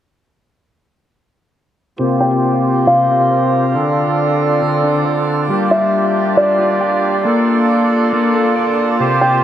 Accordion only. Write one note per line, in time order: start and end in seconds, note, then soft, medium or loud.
1.99 3.72 A#3 medium
1.99 3.72 C4 medium
1.99 9.44 F4 medium
1.99 3.72 G4 medium
1.99 3.73 C5 medium
3.74 5.48 C4 medium
3.74 8.96 D4 medium
3.74 5.48 A4 medium
3.74 8.96 D5 medium
5.49 8.96 A#3 medium
5.49 7.23 G4 medium
7.25 8.98 A4 medium
9.00 9.44 A#3 medium
9.00 9.44 C4 medium
9.00 9.44 G4 medium
9.00 9.44 C5 medium